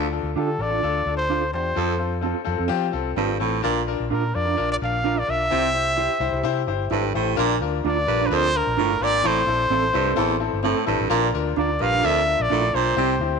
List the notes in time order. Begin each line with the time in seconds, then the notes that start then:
Already playing: D2
0.12 D4 F4 A4
0.23 D2
0.35 D3 D4 F4 G4 A4
0.58 A1 D4 F4 A4 D5
0.70 D4 F4 A4
0.83 D2 D4 F4 A4
1.06 D2 D4 F4 A4
1.17 C5
1.29 D4 F4 A4 C5
1.53 E2 D4 F4 G4 C5
1.75 F2 C4 F4 A4
1.98 C4 F4 A4
2.21 C4 F4 A4
2.25 A4
2.45 F2 C4 F4 A4
2.58 F2 C4 F4 A4
2.68 F3 C4 F4 G4
2.92 C2 C4 F4 A4
3.16 G#1 G2 C4 F4 A4
3.40 A1 A2 C4 F4 A4
3.62 A#1 A#2 D4 F4 A#4
3.87 D4 F4 A#4
4.00 A#1
4.09 A#2 D4 F4 A#4
4.34 F2 D4 F4 A#4 D5
4.45 D4 F4 A#4
4.57 A#1 D4 F4 A#4
4.72 D5
4.81 A#1 D4 F4 A#4 F5
5.03 D4 F4 A#4
5.19 D5
5.27 B1 D4 F4 A#4 E5
5.50 C2 C3 E4 G4 C5
5.74 E4 G4 C5
5.96 E4 G4 C5
6.20 C2 E4 G4 C5
6.32 C2 E4 G4 C5
6.43 C3 E4 G4 C5
6.67 G1 E4 G4 C5
6.91 G#1 G2 E4 G4 A4 C5
7.14 A1 A2 E4 G4 C5
7.36 A#1 A#2 D4 F4 A#4
7.60 D2 D4 F4 A#4
7.84 D2 D4 F4 A#4 D5
8.07 A#1 G2 D4 F4 A#4
8.19 D4 F4 A#4
8.26 D4 B4
8.30 D2 F2 F4 A#4 C5
8.53 D4 F4 A#4
8.67 A#1
8.77 G1 A2 D4 F4 A#4
9.00 G#1 A#2 D4 F4 A#4 D5
9.23 A1 A2 C4 E4 A4 C5
9.46 A#1 C4 E4 A4
9.70 A1 C4 E4 A4
9.93 C2 G2 C4 E4 A4
10.06 C4 E4 A4
10.16 A1 E2 C4 E4 A4
10.40 C4 E4 A4
10.53 G1
10.63 A2 C4 E4 A4
10.86 A1 G2 C4 E4 A4
10.99 A1
11.10 A#1 A#2 D4 F4 A#4
11.33 D2 D4 F4 A#4
11.56 D2 D4 F4 A#4 D5
11.79 A#1 G2 D4 F4 A#4 F5
11.92 D4 F4 A#4
12.02 D2 F2 D4 F4 A#4 E5
12.25 D4 F4 A#4
12.40 A#1 D5
12.49 A#1 A2 D4 F4 A4 A#4
12.72 B1 A#2 D4 F4 A#4 C5
12.96 C2 C3 C4 E4 G4
13.19 D2 C4 E4 G4